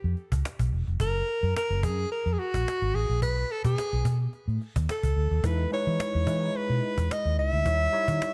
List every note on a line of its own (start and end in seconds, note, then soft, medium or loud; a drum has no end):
0.04 0.14 F2 medium
0.04 cajon slap soft
0.17 cajon slap soft
0.32 0.42 C#2 medium
0.32 cajon bass medium
0.45 cajon slap loud
0.59 0.69 B1 medium
0.59 cajon bass medium
0.72 0.84 E1 medium
0.87 0.97 F1 medium
0.87 cajon slap soft
1.00 1.21 F#1 medium
1.00 1.52 A#4 medium
1.00 cajon bass medium
1.15 cajon slap soft
1.28 cajon slap soft
1.43 1.52 F#2 medium
1.43 cajon slap soft
1.56 1.85 A#4 medium
1.56 cajon slap medium
1.70 1.85 F#1 medium
1.70 cajon slap soft
1.83 2.04 F#2 medium
1.83 2.11 G#4 medium
1.83 cajon bass medium
1.98 cajon slap soft
2.12 2.34 A#4 medium
2.12 cajon slap soft
2.26 2.36 F2 medium
2.26 cajon slap soft
2.33 2.41 G#4 medium
2.39 2.97 F#4 medium
2.39 cajon slap soft
2.54 2.64 A#1 medium
2.54 cajon bass medium
2.68 cajon slap medium
2.82 2.91 G#1 medium
2.82 cajon slap soft
2.94 3.05 A1 medium
2.94 3.22 G#4 medium
2.94 cajon slap soft
3.09 3.22 A#1 medium
3.09 cajon slap soft
3.22 3.43 B1 medium
3.22 3.53 B4 medium
3.22 cajon bass medium
3.37 cajon slap soft
3.50 3.64 A4 medium
3.50 cajon slap soft
3.65 3.74 B2 medium
3.65 4.16 G#4 medium
3.65 cajon bass medium
3.65 cajon slap soft
3.78 cajon slap medium
3.93 4.02 B1 medium
3.93 cajon slap soft
4.05 4.26 B2 medium
4.05 cajon bass medium
4.20 cajon slap soft
4.33 cajon slap soft
4.48 4.57 A2 medium
4.48 cajon slap soft
4.61 cajon slap soft
4.76 4.86 D#2 medium
4.76 cajon bass medium
4.76 cajon slap soft
4.89 5.47 A4 medium
4.89 cajon slap medium
5.03 5.13 C#2 medium
5.03 cajon bass medium
5.16 5.28 D2 medium
5.31 5.41 D#2 medium
5.31 cajon slap soft
5.43 5.65 E2 medium
5.43 5.63 G#3 medium
5.43 5.63 D#4 medium
5.43 5.63 E4 medium
5.43 5.63 B4 medium
5.43 5.73 B4 medium
5.43 cajon bass medium
5.59 cajon slap soft
5.71 6.09 G#3 medium
5.71 6.09 D#4 medium
5.71 6.10 E4 medium
5.71 6.10 B4 medium
5.71 6.58 C#5 medium
5.71 cajon slap soft
5.87 5.96 E3 medium
5.87 cajon slap soft
6.00 cajon slap loud
6.14 6.24 E2 medium
6.14 cajon slap soft
6.27 6.48 E3 medium
6.27 7.02 G#3 medium
6.27 7.02 D#4 medium
6.27 7.02 E4 medium
6.27 7.02 B4 medium
6.27 cajon bass medium
6.55 7.13 B4 medium
6.55 cajon slap soft
6.70 6.79 B2 medium
6.70 cajon slap soft
6.83 cajon slap soft
6.98 7.07 E2 medium
6.98 cajon bass medium
7.11 7.39 D#5 medium
7.11 cajon slap loud
7.25 7.38 D#2 medium
7.25 cajon slap soft
7.38 7.49 C#2 medium
7.38 8.34 E5 loud
7.38 cajon slap soft
7.53 7.62 D2 medium
7.53 cajon slap soft
7.65 7.86 D#2 medium
7.65 7.85 G3 medium
7.65 7.85 D#4 medium
7.65 7.85 E4 medium
7.65 7.85 C#5 medium
7.65 cajon bass medium
7.81 cajon slap soft
7.92 8.30 G3 medium
7.92 8.31 D#4 medium
7.92 8.31 E4 medium
7.92 8.31 C#5 medium
7.92 cajon slap soft
8.08 8.18 D#3 medium
8.08 cajon bass medium
8.22 cajon slap loud